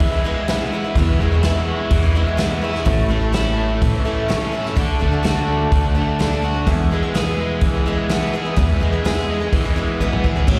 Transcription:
Already playing: twelve-string acoustic guitar E2 B2 E3 G#3 B3 E4, overdriven electric guitar E2 G#3, tonewheel organ G#4 E5 B5
0.00 overdriven electric guitar E3, upright bass E3, kick, open hi-hat
0.12 twelve-string acoustic guitar E3 G#3 B3 E4
0.24 twelve-string acoustic guitar E3 G#3 B3 E4
0.48 twelve-string acoustic guitar E2 B2 E3 G#3 B3 E4, snare, open hi-hat
0.72 twelve-string acoustic guitar E3 G#3 B3 E4
0.84 twelve-string acoustic guitar E3 G#3 B3 E4
0.95 upright bass E2, twelve-string acoustic guitar E2 B2 E3 G#3 B3 E4, tonewheel organ C#6, kick, open hi-hat
1.20 upright bass E2, twelve-string acoustic guitar E3 G#3 B3 E4
1.32 twelve-string acoustic guitar E3 G#3 B3 E4
1.43 twelve-string acoustic guitar E2 B2 E3 G#3 B3 E4, snare, open hi-hat
1.67 overdriven electric guitar G#3
1.91 upright bass E2, overdriven electric guitar E3, kick, open hi-hat
2.03 twelve-string acoustic guitar E3 G#3 B3 E4
2.15 twelve-string acoustic guitar E3 G#3 B3 E4
2.26 twelve-string acoustic guitar E3 G#3 B3 E4
2.37 twelve-string acoustic guitar E2 B2 E3 G#3 B3 E4, snare, open hi-hat
2.61 twelve-string acoustic guitar E3 G#3 B3 E4
2.73 twelve-string acoustic guitar E3 G#3 B3 E4, snare
2.85 upright bass A1, twelve-string acoustic guitar A2 E3 A3 C#4 E4, tonewheel organ A4, kick, open hi-hat
3.08 twelve-string acoustic guitar E3 A3 C#4 E4
3.21 twelve-string acoustic guitar A3 C#4 E4
3.32 twelve-string acoustic guitar A2 E3 A3 C#4 E4, snare, open hi-hat
3.58 overdriven electric guitar A3
3.82 upright bass A2, overdriven electric guitar E3, kick, open hi-hat
3.94 twelve-string acoustic guitar A3 C#4 E4
4.05 twelve-string acoustic guitar E3 A3 C#4 E4
4.28 twelve-string acoustic guitar A2 E3 A3 C#4 E4, snare, open hi-hat
4.52 twelve-string acoustic guitar E3 A3 C#4 E4
4.64 twelve-string acoustic guitar A3 C#4 E4, snare
4.75 upright bass D2, twelve-string acoustic guitar D3 A3 D4 F#4, kick, open hi-hat
4.80 tonewheel organ F#5 D6
4.99 upright bass D2, twelve-string acoustic guitar D3 A3 D4 F#4
5.11 twelve-string acoustic guitar A3 D4 F#4
5.23 twelve-string acoustic guitar D3 A3 D4 F#4, snare, open hi-hat
5.48 overdriven electric guitar A3
5.72 upright bass D2, overdriven electric guitar D3, kick, open hi-hat
5.82 twelve-string acoustic guitar A3 D4 F#4
5.95 twelve-string acoustic guitar D3 A3 D4 F#4
6.19 twelve-string acoustic guitar D3 A3 D4 F#4, snare, open hi-hat
6.42 twelve-string acoustic guitar D3 A3 D4 F#4
6.54 twelve-string acoustic guitar A3 D4 F#4
6.64 twelve-string acoustic guitar E2 B2 E3 G#3, upright bass E2, tonewheel organ B4 G#5 E6, kick, open hi-hat
6.68 twelve-string acoustic guitar B3 G#4
6.91 twelve-string acoustic guitar E3 G#3 B3 G#4
7.03 twelve-string acoustic guitar E3 G#3 B3 G#4
7.14 twelve-string acoustic guitar E2 B2 E3 G#3 B3 G#4, snare, open hi-hat
7.39 overdriven electric guitar G#3
7.61 upright bass E3, overdriven electric guitar E3, kick, open hi-hat
7.74 twelve-string acoustic guitar E3 G#3 B3 G#4
7.86 twelve-string acoustic guitar E3 G#3 B3 G#4
8.09 twelve-string acoustic guitar E2 B2 E3 G#3 B3 G#4, snare, open hi-hat
8.33 twelve-string acoustic guitar E3 G#3 B3 G#4
8.45 twelve-string acoustic guitar E3 G#3 B3 G#4
8.56 twelve-string acoustic guitar E2 B2 E3 G#3 B3 G#4, upright bass E2, kick, open hi-hat
8.80 upright bass E2, twelve-string acoustic guitar E3 G#3 B3 G#4
8.92 twelve-string acoustic guitar E3 G#3 B3 G#4
9.04 twelve-string acoustic guitar E2 B2 E3 G#3 B3 G#4, snare, open hi-hat
9.19 snare
9.30 overdriven electric guitar G#3
9.40 twelve-string acoustic guitar E3 G#3 B3 G#4
9.53 upright bass E2, overdriven electric guitar E3, kick, open hi-hat
9.64 twelve-string acoustic guitar E3 G#3 B3 G#4
9.76 twelve-string acoustic guitar E3 G#3 B3 G#4
10.00 twelve-string acoustic guitar E2 B2 E3 G#3 B3 G#4, kick
10.13 mid tom
10.23 twelve-string acoustic guitar E3 G#3 B3 G#4, kick
10.36 twelve-string acoustic guitar E3 G#3 B3 G#4, floor tom
10.47 upright bass A1, twelve-string acoustic guitar A2 E3 A3 C#4 E4, tonewheel organ C#5 A5 E6, kick, crash

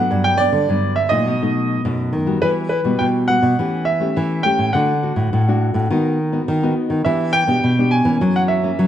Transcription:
Already playing: nylon-string guitar F#3 B3 D4, grand piano F#5
0.11 nylon-string guitar G2
0.24 grand piano G5
0.37 nylon-string guitar F#3 B3 D4, grand piano D5
0.52 nylon-string guitar D3
0.69 nylon-string guitar G2 D3 F#3 B3 D4
0.96 grand piano E5
1.09 nylon-string guitar A#2 F#3 A3 D#4, grand piano D#5
1.27 nylon-string guitar B2
1.42 nylon-string guitar F#3 A3 D#4
1.85 nylon-string guitar F#2 B2 F#3 A3 D#4
2.13 nylon-string guitar D#3
2.26 nylon-string guitar G3 B3 F#4
2.42 nylon-string guitar E3, grand piano B4
2.69 grand piano B4
2.84 nylon-string guitar B2 G3 B3 F#4
2.99 nylon-string guitar B2, grand piano G5
3.28 nylon-string guitar G3 B3 F#4, grand piano F#5
3.43 nylon-string guitar B2
3.59 nylon-string guitar E3 A3 C#4 G4
3.85 grand piano E5
4.00 nylon-string guitar A3 C#4 G4
4.16 nylon-string guitar E3
4.43 nylon-string guitar A3 C#4 G4, grand piano G5
4.58 nylon-string guitar A2
4.73 nylon-string guitar D3 A3 D4 F#4, grand piano F#5
5.03 nylon-string guitar A3 D4 F#4
5.16 nylon-string guitar A2
5.33 nylon-string guitar A2
5.48 nylon-string guitar A3 D4 F#4
5.74 nylon-string guitar A2
5.90 nylon-string guitar D#3 B3 D#4 F#4
6.32 nylon-string guitar B3 D#4 F#4
6.48 nylon-string guitar D#3
6.63 nylon-string guitar B3 D#4 F#4
6.90 nylon-string guitar D#3
7.05 nylon-string guitar E3 B3 D4 G4, grand piano E5
7.33 grand piano G5
7.47 nylon-string guitar B2 B3 D4 G4
7.64 nylon-string guitar B2
7.79 nylon-string guitar B3 D4 G4
7.91 grand piano G#5
8.05 nylon-string guitar E3 A#3 C#4
8.21 nylon-string guitar F#2 F#3
8.36 grand piano F#5
8.48 grand piano E5
8.63 nylon-string guitar E3 A#3 C#4
8.79 nylon-string guitar C#3 F#3

